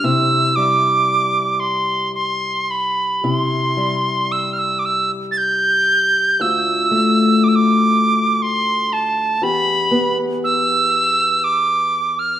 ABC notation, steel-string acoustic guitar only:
X:1
M:3/4
L:1/8
Q:1/4=58
K:C
V:1 name="Steel-string acoustic guitar" clef=bass
[C,E] G,4- G, | [C,E] G,4- G, | [D,,F] A,4- A, | [E,,G] B,4- B, |]